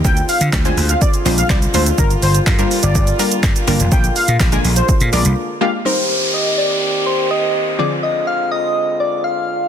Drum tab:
HH |-xox-xox-xox-xox|-xox-xox-xox-xox|-xox-xox-xox----|----------------|
SH |xxxxxxxxxxxxxxxx|xxxxxxxxxxxxxxxx|xxxxxxxxxxxx----|----------------|
CP |----x-------x---|----x-------x---|----x-----------|----------------|
SD |----o-------o---|----o-------o---|----o-----------|----------------|
BD |o---o---o---o---|o---o---o---o---|o---o---o-------|----------------|

HH |----------------|
SH |----------------|
CP |----------------|
SD |----------------|
BD |----------------|